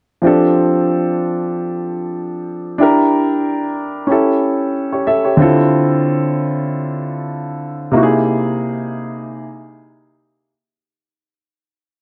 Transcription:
grand piano
0.22 F3 C4 D4 G4
0.27 A4
2.78 D4 E4 G4
2.83 A#4
4.07 C#4 E4 G4
4.12 A4
4.93 G4 C#5
5.07 A4 E5
5.24 G4 C#5
5.37 D3 C4 E4 F4
5.42 A4
7.91 C3 A#3 D#4 E4
7.97 F#4
8.03 G#4

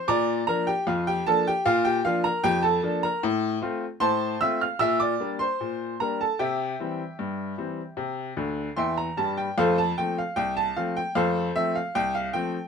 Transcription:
upright piano
0.08 A#2 D5 A#5 D6
0.47 F3 A#3 D4 A#4 A#5
0.67 G4 G5
0.87 F2 F4 F5
1.07 G4 G5
1.27 F3 A#3 D4 A4 A5
1.47 G4 G5
1.65 A#2 F4 F5
1.85 G4 G5
2.05 F3 A#3 D4 F4 F5
2.24 A#4 A#5
2.44 F2 G4 G5
2.63 A4 A5
2.83 F3 A#3 D4
3.03 A#4 A#5
3.23 A2
3.61 A3 C4 F4
4.00 A2 C5 A5 C6
4.41 A3 C4 F4 E5 E6
4.61 F5 F6
4.79 A#2 E5 E6
5.00 D5 D6
5.20 G3 A#3 D4
5.39 C5 C6
5.61 A#2
6.00 G3 A#3 D4 A#4 A#5
6.21 A4 A5
6.39 C3 G4 E5 G5
6.79 E3 G3 C4
7.19 G2
7.58 E3 G3 C4
7.97 C3
8.37 D2 D3
8.76 E2 E3 E5 G5 C6
8.97 A#5
9.17 G2 G3 A5
9.37 G5
9.58 F2 A3 A4 C5 F5
9.78 A5
9.98 F3 A3 C4 G5
10.18 F5
10.36 C2 G5
10.57 A5
10.76 F3 A3 C4 F5
10.97 G5
11.15 F2 A3 A4 C5 F5
11.56 F3 A3 C4 E5
11.75 F5
11.95 C2 G5
12.15 F5
12.33 F3 A3 C4 G5

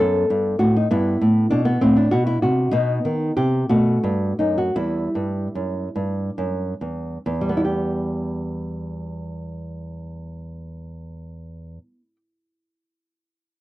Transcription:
nylon-string guitar
0.00 F#2 B3 A4
0.30 G2
0.59 A2 F#4
0.77 D#4
0.91 G2 B3 E4
1.21 A2
1.50 B2 D4
1.65 B3
1.81 A2 C4
1.96 D4
2.11 B2 F#4
2.27 E4
2.42 C3 F#4
2.71 B2 B3 D#4
3.05 D#3
3.37 C3 G4
3.69 B2 A3 F#4
4.04 G2
4.39 F#2 D#4
4.58 F#4
4.76 E2 G3 E4
5.15 G2
5.55 F#2
5.96 G2
6.38 F#2
6.81 E2
7.26 E2
7.41 G3
7.49 B3
7.57 E4
7.65 G4

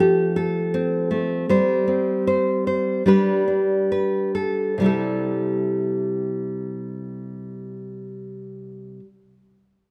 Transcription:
nylon-string guitar
Already playing: F3 A3 C4 A4
0.00 G4
0.36 A4
0.74 C4
1.11 A3
1.49 G3 C5
1.88 C4
2.27 C5
2.67 C5
3.06 G3 D4 G4 B4
3.48 D4
3.92 B4
4.35 A4
4.78 C3 G3 E4
4.84 G4 A4

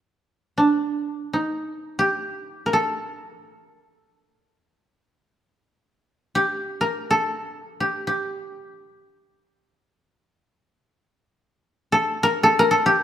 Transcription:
koto
0.58 D4
1.33 D#4
1.99 G4
2.66 A#4
2.73 A4
6.35 G4
6.81 A#4
7.11 A4
7.80 G4
8.07 G4
11.92 A4
12.23 A#4
12.43 A4
12.59 A#4
12.71 A4
12.86 G4

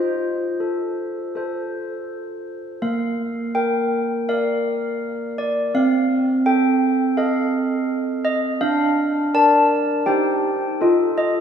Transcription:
handbells
Already playing: F4 C5
0.60 A4
1.35 A4 C5
2.82 A#3 F5
3.55 A#4 G5
4.29 A#4 D5 F5
5.38 D5
5.74 C4 F5
6.46 A4 G5
7.17 A4 D#5 F5
8.25 D#5
8.61 D4 F5
9.34 A#4 D5 A5
10.06 D#4 G4 C5 G5
10.81 F4 A4 D#5
11.18 D#5

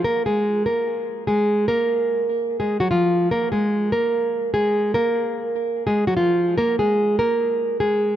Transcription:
nylon-string guitar
0.04 A#3 A#4
0.26 G#3 G#4
0.66 A#3 A#4
1.27 G#3 G#4
1.68 A#3 A#4
2.60 G#3 G#4
2.80 F#3 F#4
2.91 F3 F4
3.31 A#3 A#4
3.52 G#3 G#4
3.92 A#3 A#4
4.54 G#3 G#4
4.94 A#3 A#4
5.87 G#3 G#4
6.07 F#3 F#4
6.17 F3 F4
6.58 A#3 A#4
6.79 G#3 G#4
7.19 A#3 A#4
7.80 G#3 G#4

